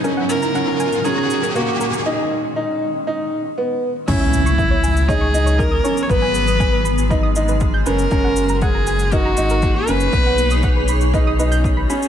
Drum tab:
CC |----------------|----------------|x---------------|----------------|
SH |x-xxx-xxx-xxx-xx|----------------|x-xxx-xxx-xxx-xx|x-xxx-xxx-xxx-xx|
BD |----------------|----------------|o---o---o---o---|o---o---o---o---|

CC |----------------|----------------|
SH |x-xxx-xxx-xxx-xx|x-xxx-xxx-xxx-xx|
BD |o---o---o---o---|o---o---o---o---|